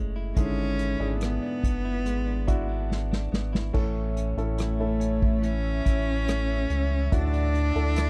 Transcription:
Already playing: F#1 A2 G#3 A3 C#4 E4 G#4
0.16 E4
0.36 G#1 G#2 D3 G#3 C#4 E4 G#4, kick, closed hi-hat
0.79 E4, closed hi-hat
1.00 G#1 D4 E4 G#4
1.21 B3, cross-stick, closed hi-hat
1.42 D4
1.63 F#1 B3, kick, closed hi-hat
1.85 E4
2.05 G#1 G#3, closed hi-hat
2.26 D4
2.47 D4 E4 F#4, kick, closed hi-hat
2.69 D4
2.90 B3, snare
3.12 D4, snare
3.32 G#1 B3, snare
3.53 E4, snare
3.73 A1 A2 E3 C#4 E4 A4 C#5 E5 E6, kick, crash
4.16 C#4, closed hi-hat
4.37 A1 C#4 E4 A4, closed hi-hat
4.58 A3 E4, cross-stick, closed hi-hat
4.80 C#4 E4 A4
5.00 C#4, closed hi-hat
5.22 kick
5.42 E3 C#4, closed hi-hat
5.85 A1 E4, kick, closed hi-hat
6.28 A3, cross-stick, closed hi-hat
6.70 C#2 C#4, closed hi-hat
7.11 D2 A2 D4 E4 F#4 D5 F#5, kick, closed hi-hat
7.34 closed hi-hat
7.54 D4, closed hi-hat
7.75 D2 D4 E4 A4, closed hi-hat
7.96 E4, cross-stick, closed hi-hat

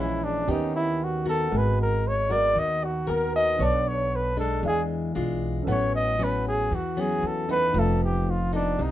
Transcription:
Already playing: A#1 A#2 E3 G#3 C#4 G#4 A#4 E5
0.00 E4
0.24 D4
0.45 D#2 D#3 B3 C#4 G4
0.50 D#4 B4 D#5
0.76 E4
1.04 F#4
1.25 B3 F#4 A4 A#4
1.49 G#1 G#3 F#4 A#4
1.55 B4 G#5
1.82 A#4
2.08 C#5
2.30 B3 F#4 A#4 D5
2.55 D#2 D#3 D#5
2.84 F#4
3.07 D#2 B3 F#4 A#4
3.33 F#4 A#4 B4 D#5 G#5
3.56 B1 B3 D4 B4 C#5
3.60 A4 C#5 D5 A5
3.88 C#5
4.16 B4
4.37 G#3 D4 A4
4.62 E2 E3 G#4 D5
4.66 G#4 F5
5.15 B1 G#3 D4 F4
5.62 C#4 A4 B4
5.67 A1 A2 F#3 B3 C#4 F#5
5.71 C#5
5.96 D#5
6.19 F#3 B3 C#4
6.24 B4
6.48 G#4
6.71 E2 E3 F#4
6.97 F#3 B3 C#4 G#4
7.23 E2
7.27 A4
7.47 B3 C#4 D#4 A4 B4 F#5
7.51 B4
7.73 F1 F3 D#4 A4 B4
7.78 A4 F5
8.04 G4
8.31 F4
8.53 B3 D4 D#4 A4
8.79 C2 C3
8.83 D#4

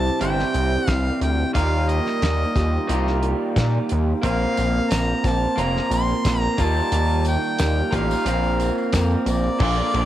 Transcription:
Already playing: C2 C3 E3 G3 C4 E4 G4 C5 A5
0.20 G1 C3 E3 G3 C4 E4 G4 C5 G5, closed hi-hat
0.39 snare
0.54 C2, closed hi-hat
0.87 C2 G3 C4 E4 F5, kick, snare, closed hi-hat
0.93 G4
1.21 D2 G5, closed hi-hat
1.54 D#2 D#3 G3 A#3 F4 A#4 F5, kick, closed hi-hat
1.58 G4
1.89 D#5, closed hi-hat
2.06 snare
2.22 D#2 D#3 A#3 F4 G4, snare, closed hi-hat
2.55 D#2 A#3 F4 G4, kick, snare, closed hi-hat
2.89 C2 D#3 G3 A#3 F4 G4 A#4, closed hi-hat
3.07 snare
3.23 closed hi-hat
3.56 A#2 D#3 A#3 F4 G4, kick, snare, closed hi-hat
3.89 D#2, closed hi-hat
4.22 A#1 A#2 F3 A#3 C4 F4 A#4 F5, kick, closed hi-hat
4.57 A#1, closed hi-hat, tambourine
4.89 A#1 F3 A#3 C4 A#4 A#5, snare, closed hi-hat, tambourine
5.09 tambourine
5.24 A#1 A#3 C4 A#4 A5, kick, snare, closed hi-hat
5.57 F1 A#2 F3 A#3 C4 F4 A#4 A#5, closed hi-hat, tambourine
5.77 snare
5.91 A#1 C6, closed hi-hat, tambourine
6.08 tambourine
6.24 A#1 F3 A#3 C4 A#4, kick, snare, closed hi-hat, tambourine
6.41 A#5, tambourine
6.58 D#2 D#3 G3 A#3 F4 G4 A#4, kick, closed hi-hat, tambourine
6.62 A5
6.77 tambourine
6.92 D#2 D#3 A#3 F4 G4, closed hi-hat, tambourine
7.09 tambourine
7.25 G5, closed hi-hat, tambourine
7.44 tambourine
7.58 D#2 D#3 A#3 F4 G4, snare, closed hi-hat, tambourine
7.91 A1 D#3 G3 A#3 F4 G4 A#4, kick, closed hi-hat, tambourine
7.95 F5
8.11 tambourine
8.25 A#1 A#2 F3 A#3 C4 F4 A#4, closed hi-hat
8.44 tambourine
8.60 closed hi-hat, tambourine
8.78 tambourine
8.93 F2 F3 A#3 C4 A#4, kick, snare, closed hi-hat, tambourine
9.11 tambourine
9.26 A#1 A#3 C4 A#4 D5, closed hi-hat, tambourine
9.43 tambourine
9.59 A#1 A#2 D3 F3 A#3 D4 F4 A#4, kick, crash
9.76 A#3 D4 F4
9.93 A#1 D3 A#3 D4 F4 A#4, ride

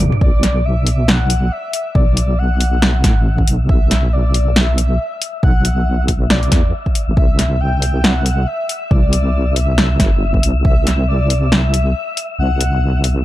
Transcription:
Already playing: D5
0.00 E2
0.12 mid tom
0.21 B1 D5 E5, kick
0.43 snare, closed hi-hat
0.65 E5
0.87 open hi-hat
1.08 F#5, snare
1.30 closed hi-hat
1.52 E5
1.73 closed hi-hat
1.95 B1 D5, kick
2.17 closed hi-hat
2.39 F#5
2.61 open hi-hat
2.82 snare
3.04 A1, kick, snare, closed hi-hat
3.38 kick
3.47 B1, closed hi-hat
3.69 B1 E5, kick
3.91 snare, closed hi-hat
4.13 D5
4.34 open hi-hat
4.56 E5, snare
4.78 closed hi-hat
5.22 closed hi-hat
5.43 B1 F#5, kick
5.65 closed hi-hat
6.08 kick, open hi-hat
6.30 D5, snare
6.43 closed hi-hat
6.52 E2, kick, snare, closed hi-hat
6.86 kick
6.95 closed hi-hat
7.08 A1
7.17 C2 E5, kick
7.39 snare, closed hi-hat
7.60 G5
7.82 open hi-hat
8.04 F#5, snare
8.26 closed hi-hat
8.47 E5
8.69 closed hi-hat
8.91 C2 D5, kick
9.13 closed hi-hat
9.56 E5, open hi-hat
9.78 snare
10.00 G1, kick, snare, closed hi-hat
10.34 kick
10.43 C2, closed hi-hat
10.65 C2 E5, kick
10.87 snare, closed hi-hat
11.08 D5
11.30 open hi-hat
11.52 E5, snare
11.74 closed hi-hat
12.17 closed hi-hat
12.39 C2 F#5
12.61 closed hi-hat
13.04 open hi-hat

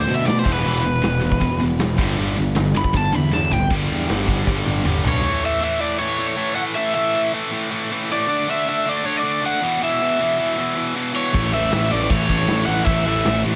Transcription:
0.00 C5
0.07 B2 D3 A3
0.15 E5
0.25 B2 D3 A3 D5, snare, open hi-hat
0.39 C5
0.44 E1 E2 B2 E3, kick
0.53 B4
0.63 E1 E2 B2 E3, open hi-hat
0.83 E1 E2 B2
1.02 E1 E2 B2, snare, open hi-hat
1.20 E1 E2 B2
1.32 kick
1.41 E1 E2 B2, kick, open hi-hat
1.60 E1 E2 B2
1.79 E1 E2 B2, snare, open hi-hat
1.98 G1 G2 D3 G3, kick
2.17 G1 G2 D3 G3, open hi-hat
2.37 G1 G2 D3
2.55 G1 G2 D3, snare, open hi-hat
2.75 G1 G2 D3 B5
2.84 kick
2.93 G1 G2 D3 A5, kick, open hi-hat
3.12 E2 G2 D3 B5
3.32 E2 G2 D3 A5, snare
3.51 G1 G2 D3 G5, floor tom
3.71 G1 G2 D3 G3, kick, crash
3.91 E2
4.07 G1 G2 D3 G3, snare, crash
4.28 G1 G2 D3 G3, kick
4.47 G1 G2 D3 G3, kick, snare
4.66 G1, high tom
4.85 G1 G2 D3 G3, mid tom
5.04 B1 G2 D3 G3, floor tom
5.08 C#5
5.23 A2 E3 A3
5.42 A2 E3 A3 E5
5.60 A2 E3 A3 E5
5.79 A2 E3 A3 D5
5.99 A2 E3 A3 C#5
6.17 A2 E3 A3
6.28 C#5
6.36 A2 E3 A3
6.55 A2 E3 A3 F#5
6.75 A2 E3 A3 E5
6.94 A2 E3 A3 E5
7.14 A2 E3 A3
7.32 A2 E3 A3
7.52 A2 E3 A3
7.70 A2 E3 A3
7.90 A2 E3 A3
8.11 A2 E3 A3 D5
8.28 D3 A3 D4
8.48 D3 A3 D4 E5
8.67 D3 A3 D4 E5
8.86 D3 A3 D4 D5
9.04 D3 A3 D4 C#5
9.17 D5
9.22 D3 A3 D4
9.42 D3 A3 D4
9.46 F#5
9.61 E2 B2 E3
9.80 E2 B2 E3 E5
10.01 E2 B2 E3
10.20 E2 B2 E3
10.38 E2 B2 E3
10.58 E2 B2 E3
10.75 E2 B2 E3
10.95 E2 B2 E3
11.13 E2 B2 E3 C#5
11.33 A1 A2 E3 A3, kick, crash
11.52 A1 A2 E3 A3 E5, crash
11.70 A1 A2 E3 A3 E5, snare, crash
11.89 A1 A2 E3 A3 D5, crash
12.09 A1 A2 E3 A3 C#5, kick, crash
12.29 A1 A2 E3 A3, kick, crash
12.38 C#5
12.48 A1 A2 E3 A3, snare, crash
12.66 A1 A2 E3 A3 F#5, crash
12.85 A1 A2 E3 A3 E5, kick, crash
13.06 A2 E3 A3 E5, crash
13.25 A1 A2 E3 A3, snare, crash
13.43 A1 A2 E3 A3, crash

